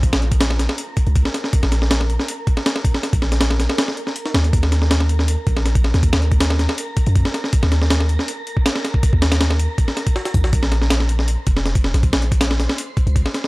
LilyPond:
<<
  \new Staff \with { instrumentName = "Synth texture" } { \time 4/4 \key ees \dorian \tempo 4 = 160 <bes' bes''>1~ | <bes' bes''>1~ | <bes' bes''>1~ | <bes' bes''>1~ |
<bes' bes''>1~ | <bes' bes''>1~ | <bes' bes''>1 | <c'' c'''>1~ |
<c'' c'''>1 | }
  \new Staff \with { instrumentName = "808-style bass" } { \clef bass \time 4/4 \key ees \dorian bes,,16 bes,,4. r4 des,8 r8. | r16 bes,,4. r2 r16 | r16 bes,,4. r4. r16 ees,8 | ees,2~ ees,16 r16 bes,,4~ bes,,16 ees,16~ |
ees,16 ees,4. r4 ges,8 r8. | r16 ees,4. r2 r16 | r16 ees,4. r4. r16 bes,,8 | bes,,2~ bes,,16 r16 f,,4~ f,,16 bes,,16~ |
bes,,16 bes,,4. r4 des,8 r8. | }
  \new DrumStaff \with { instrumentName = "Drums" } \drummode { \time 4/4 <hh bd>16 <hh sn>16 hh16 <hh bd>16 <hh sn>16 sn16 <hh sn>16 sn16 hh8 <hh bd>16 hh16 <hh bd>16 sn16 <hh sn>16 sn16 | <hh bd>16 sn16 <hh sn>16 sn16 <hh sn>16 sn16 hh16 sn16 hh8 <hh bd>16 sn16 <hh sn>16 sn16 <hh bd>16 sn16 | <hh sn>16 <hh bd>16 sn16 <hh sn>16 <hh sn>16 sn16 <hh sn>16 sn16 <hh sn>16 sn16 hh16 sn16 hh16 sn16 <hh sn>16 hh16 | <hh bd>16 sn16 <hh sn>16 sn16 <hh sn>16 sn16 hh16 sn16 hh8 <hh bd>16 sn16 <hh sn>16 <hh bd>16 sn16 <hh sn>16 |
<hh bd>16 <hh sn>16 hh16 <hh bd>16 <hh sn>16 sn16 <hh sn>16 sn16 hh8 <hh bd>16 hh16 <hh bd>16 sn16 <hh sn>16 sn16 | <hh bd>16 sn16 <hh sn>16 sn16 <hh sn>16 sn16 hh16 sn16 hh8 hh16 bd16 <hh sn>16 sn16 <hh sn>16 bd16 | <hh bd>16 bd16 <hh sn>16 <hh sn>16 <hh sn>16 sn16 hh8 <hh bd>16 sn16 <hh sn>16 <hh bd>16 sn16 <hh sn>16 <hh bd>16 sn16 | <hh bd>16 sn16 <hh sn>16 sn16 <hh sn>16 sn16 hh16 sn16 hh8 <hh bd>16 sn16 <hh sn>16 <hh bd>16 sn16 <hh sn>16 |
<hh bd>16 <hh sn>16 hh16 <hh bd>16 <hh sn>16 sn16 <hh sn>16 sn16 hh8 <hh bd>16 hh16 <hh bd>16 sn16 <hh sn>16 sn16 | }
>>